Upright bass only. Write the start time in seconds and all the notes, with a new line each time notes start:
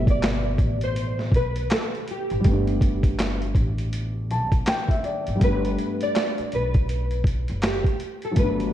Already playing: G1
0.59 A1
1.32 B1
2.31 G#1
2.45 G1
3.55 A1
4.31 B1
5.28 G#1
5.42 G1
6.39 muted upright bass stroke
6.53 B1
7.50 F#1
8.38 G1